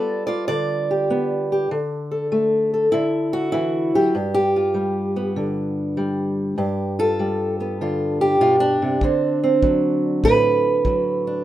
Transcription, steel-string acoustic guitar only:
0, 0, Header, 1, 2, 480
1, 0, Start_track
1, 0, Tempo, 609756
1, 1336, Time_signature, 4, 2, 24, 8
1, 9008, End_track
2, 0, Start_track
2, 0, Title_t, "Steel-string acoustic guitar"
2, 0, Program_c, 0, 25
2, 0, Note_on_c, 0, 55, 74
2, 0, Note_on_c, 0, 59, 70
2, 0, Note_on_c, 0, 65, 44
2, 0, Note_on_c, 0, 69, 81
2, 0, Note_on_c, 0, 74, 84
2, 201, Note_off_c, 0, 74, 0
2, 210, Note_on_c, 0, 74, 86
2, 213, Note_off_c, 0, 65, 0
2, 222, Note_on_c, 0, 65, 47
2, 367, Note_off_c, 0, 74, 0
2, 371, Note_off_c, 0, 69, 0
2, 376, Note_on_c, 0, 74, 105
2, 382, Note_on_c, 0, 50, 65
2, 714, Note_on_c, 0, 67, 47
2, 855, Note_off_c, 0, 59, 0
2, 868, Note_on_c, 0, 59, 69
2, 1185, Note_off_c, 0, 67, 0
2, 1197, Note_on_c, 0, 67, 51
2, 1316, Note_off_c, 0, 55, 0
2, 1319, Note_off_c, 0, 50, 0
2, 1319, Note_off_c, 0, 65, 0
2, 1323, Note_off_c, 0, 59, 0
2, 1327, Note_off_c, 0, 67, 0
2, 1348, Note_on_c, 0, 50, 78
2, 1665, Note_on_c, 0, 69, 43
2, 1824, Note_on_c, 0, 57, 64
2, 2140, Note_off_c, 0, 69, 0
2, 2154, Note_on_c, 0, 69, 46
2, 2294, Note_off_c, 0, 57, 0
2, 2295, Note_off_c, 0, 74, 0
2, 2297, Note_on_c, 0, 64, 87
2, 2301, Note_off_c, 0, 50, 0
2, 2312, Note_on_c, 0, 50, 67
2, 2623, Note_on_c, 0, 66, 88
2, 2762, Note_off_c, 0, 64, 0
2, 2771, Note_on_c, 0, 64, 89
2, 2784, Note_on_c, 0, 52, 68
2, 3100, Note_off_c, 0, 52, 0
2, 3104, Note_off_c, 0, 69, 0
2, 3112, Note_on_c, 0, 54, 64
2, 3112, Note_on_c, 0, 67, 78
2, 3244, Note_off_c, 0, 50, 0
2, 3253, Note_off_c, 0, 64, 0
2, 3259, Note_off_c, 0, 66, 0
2, 3264, Note_off_c, 0, 54, 0
2, 3264, Note_on_c, 0, 43, 75
2, 3410, Note_off_c, 0, 67, 0
2, 3420, Note_on_c, 0, 67, 90
2, 3591, Note_on_c, 0, 65, 46
2, 3733, Note_on_c, 0, 55, 63
2, 4065, Note_on_c, 0, 59, 43
2, 4222, Note_on_c, 0, 50, 67
2, 4377, Note_off_c, 0, 67, 0
2, 4691, Note_off_c, 0, 55, 0
2, 4701, Note_on_c, 0, 55, 65
2, 5159, Note_off_c, 0, 50, 0
2, 5159, Note_off_c, 0, 55, 0
2, 5160, Note_off_c, 0, 43, 0
2, 5161, Note_off_c, 0, 59, 0
2, 5164, Note_off_c, 0, 65, 0
2, 5177, Note_on_c, 0, 43, 77
2, 5181, Note_on_c, 0, 67, 50
2, 5498, Note_off_c, 0, 67, 0
2, 5502, Note_on_c, 0, 65, 47
2, 5507, Note_on_c, 0, 69, 100
2, 5663, Note_on_c, 0, 55, 63
2, 5986, Note_on_c, 0, 59, 47
2, 6139, Note_off_c, 0, 65, 0
2, 6149, Note_on_c, 0, 50, 64
2, 6153, Note_on_c, 0, 65, 50
2, 6461, Note_off_c, 0, 69, 0
2, 6464, Note_on_c, 0, 67, 85
2, 6611, Note_off_c, 0, 65, 0
2, 6615, Note_off_c, 0, 50, 0
2, 6618, Note_on_c, 0, 47, 66
2, 6621, Note_on_c, 0, 65, 89
2, 6768, Note_off_c, 0, 65, 0
2, 6771, Note_on_c, 0, 62, 91
2, 6938, Note_off_c, 0, 47, 0
2, 6944, Note_on_c, 0, 48, 71
2, 7078, Note_off_c, 0, 43, 0
2, 7081, Note_off_c, 0, 55, 0
2, 7082, Note_off_c, 0, 59, 0
2, 7100, Note_off_c, 0, 48, 0
2, 7101, Note_off_c, 0, 67, 0
2, 7106, Note_on_c, 0, 50, 75
2, 7116, Note_on_c, 0, 60, 53
2, 7424, Note_off_c, 0, 60, 0
2, 7428, Note_on_c, 0, 60, 49
2, 7581, Note_on_c, 0, 54, 65
2, 8066, Note_on_c, 0, 45, 69
2, 8068, Note_on_c, 0, 71, 108
2, 8216, Note_off_c, 0, 62, 0
2, 8536, Note_off_c, 0, 54, 0
2, 8545, Note_on_c, 0, 54, 62
2, 8874, Note_on_c, 0, 62, 49
2, 9004, Note_off_c, 0, 54, 0
2, 9005, Note_off_c, 0, 45, 0
2, 9005, Note_off_c, 0, 50, 0
2, 9006, Note_off_c, 0, 60, 0
2, 9008, Note_off_c, 0, 62, 0
2, 9008, Note_off_c, 0, 71, 0
2, 9008, End_track
0, 0, End_of_file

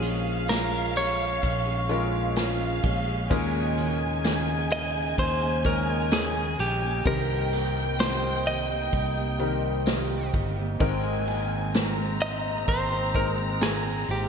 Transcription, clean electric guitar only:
0, 0, Header, 1, 2, 480
1, 0, Start_track
1, 0, Key_signature, -4, "major"
1, 0, Tempo, 937500
1, 1692, Time_signature, 4, 2, 24, 8
1, 7314, End_track
2, 0, Start_track
2, 0, Title_t, "Clean electric guitar"
2, 0, Program_c, 0, 27
2, 0, Note_on_c, 0, 68, 92
2, 253, Note_on_c, 0, 70, 81
2, 267, Note_off_c, 0, 68, 0
2, 495, Note_off_c, 0, 70, 0
2, 497, Note_on_c, 0, 73, 82
2, 1434, Note_off_c, 0, 73, 0
2, 2418, Note_on_c, 0, 75, 99
2, 2639, Note_off_c, 0, 75, 0
2, 2658, Note_on_c, 0, 72, 95
2, 2897, Note_on_c, 0, 70, 80
2, 2902, Note_off_c, 0, 72, 0
2, 3137, Note_off_c, 0, 70, 0
2, 3139, Note_on_c, 0, 68, 88
2, 3378, Note_off_c, 0, 68, 0
2, 3380, Note_on_c, 0, 67, 82
2, 3618, Note_off_c, 0, 67, 0
2, 3620, Note_on_c, 0, 70, 96
2, 4076, Note_off_c, 0, 70, 0
2, 4097, Note_on_c, 0, 72, 86
2, 4318, Note_off_c, 0, 72, 0
2, 4337, Note_on_c, 0, 75, 92
2, 5274, Note_off_c, 0, 75, 0
2, 6255, Note_on_c, 0, 75, 99
2, 6493, Note_off_c, 0, 75, 0
2, 6495, Note_on_c, 0, 72, 96
2, 6735, Note_on_c, 0, 70, 86
2, 6741, Note_off_c, 0, 72, 0
2, 6800, Note_off_c, 0, 70, 0
2, 6978, Note_on_c, 0, 68, 88
2, 7222, Note_off_c, 0, 68, 0
2, 7225, Note_on_c, 0, 67, 76
2, 7314, Note_off_c, 0, 67, 0
2, 7314, End_track
0, 0, End_of_file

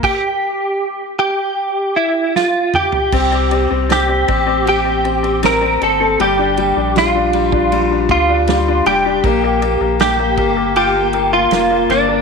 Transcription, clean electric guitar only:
0, 0, Header, 1, 2, 480
1, 0, Start_track
1, 0, Tempo, 772201
1, 20, Time_signature, 4, 2, 24, 8
1, 2900, Tempo, 760456
1, 7666, End_track
2, 0, Start_track
2, 0, Title_t, "Clean electric guitar"
2, 0, Program_c, 0, 27
2, 25, Note_on_c, 0, 67, 92
2, 710, Note_off_c, 0, 67, 0
2, 740, Note_on_c, 0, 67, 94
2, 1221, Note_on_c, 0, 64, 87
2, 1434, Note_off_c, 0, 67, 0
2, 1466, Note_off_c, 0, 64, 0
2, 1468, Note_on_c, 0, 65, 93
2, 1709, Note_on_c, 0, 67, 97
2, 1713, Note_off_c, 0, 65, 0
2, 2429, Note_off_c, 0, 67, 0
2, 2437, Note_on_c, 0, 67, 91
2, 2905, Note_off_c, 0, 67, 0
2, 2912, Note_on_c, 0, 67, 92
2, 3364, Note_off_c, 0, 67, 0
2, 3399, Note_on_c, 0, 70, 103
2, 3617, Note_off_c, 0, 70, 0
2, 3636, Note_on_c, 0, 69, 101
2, 3855, Note_off_c, 0, 69, 0
2, 3875, Note_on_c, 0, 67, 89
2, 4358, Note_off_c, 0, 67, 0
2, 4360, Note_on_c, 0, 65, 98
2, 5067, Note_off_c, 0, 65, 0
2, 5075, Note_on_c, 0, 65, 100
2, 5549, Note_off_c, 0, 65, 0
2, 5551, Note_on_c, 0, 67, 109
2, 6265, Note_off_c, 0, 67, 0
2, 6272, Note_on_c, 0, 67, 96
2, 6743, Note_off_c, 0, 67, 0
2, 6751, Note_on_c, 0, 67, 99
2, 7105, Note_off_c, 0, 67, 0
2, 7108, Note_on_c, 0, 65, 93
2, 7472, Note_on_c, 0, 62, 87
2, 7476, Note_off_c, 0, 65, 0
2, 7666, Note_off_c, 0, 62, 0
2, 7666, End_track
0, 0, End_of_file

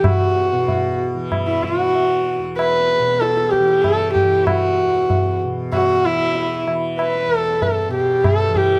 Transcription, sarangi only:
0, 0, Header, 1, 2, 480
1, 0, Start_track
1, 0, Tempo, 629591
1, 39, Time_signature, 7, 2, 24, 8
1, 6705, End_track
2, 0, Start_track
2, 0, Title_t, "Sarangi"
2, 0, Program_c, 0, 110
2, 37, Note_on_c, 0, 66, 82
2, 764, Note_off_c, 0, 66, 0
2, 1125, Note_on_c, 0, 64, 71
2, 1250, Note_on_c, 0, 66, 82
2, 1261, Note_off_c, 0, 64, 0
2, 1852, Note_off_c, 0, 66, 0
2, 1968, Note_on_c, 0, 71, 93
2, 2441, Note_on_c, 0, 69, 87
2, 2453, Note_off_c, 0, 71, 0
2, 2674, Note_on_c, 0, 67, 77
2, 2686, Note_off_c, 0, 69, 0
2, 2916, Note_on_c, 0, 69, 89
2, 2928, Note_off_c, 0, 67, 0
2, 3150, Note_off_c, 0, 69, 0
2, 3155, Note_on_c, 0, 67, 72
2, 3402, Note_on_c, 0, 66, 80
2, 3413, Note_off_c, 0, 67, 0
2, 4128, Note_off_c, 0, 66, 0
2, 4377, Note_on_c, 0, 66, 94
2, 4612, Note_on_c, 0, 64, 94
2, 4624, Note_off_c, 0, 66, 0
2, 5091, Note_off_c, 0, 64, 0
2, 5338, Note_on_c, 0, 71, 78
2, 5620, Note_off_c, 0, 71, 0
2, 5620, Note_on_c, 0, 69, 78
2, 5814, Note_off_c, 0, 69, 0
2, 5814, Note_on_c, 0, 69, 66
2, 6049, Note_off_c, 0, 69, 0
2, 6053, Note_on_c, 0, 67, 68
2, 6293, Note_on_c, 0, 69, 81
2, 6304, Note_off_c, 0, 67, 0
2, 6530, Note_on_c, 0, 67, 70
2, 6542, Note_off_c, 0, 69, 0
2, 6705, Note_off_c, 0, 67, 0
2, 6705, End_track
0, 0, End_of_file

